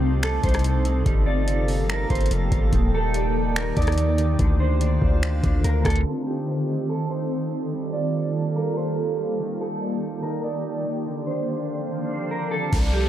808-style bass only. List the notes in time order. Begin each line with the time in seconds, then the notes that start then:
Already playing: C2
0.44 C2
1.06 G1
2.10 G1
2.31 F1
2.52 G1
2.73 D#1
3.77 D#2
4.39 D2
5.02 D2
5.44 D2
5.64 D2
5.85 D2
12.73 C2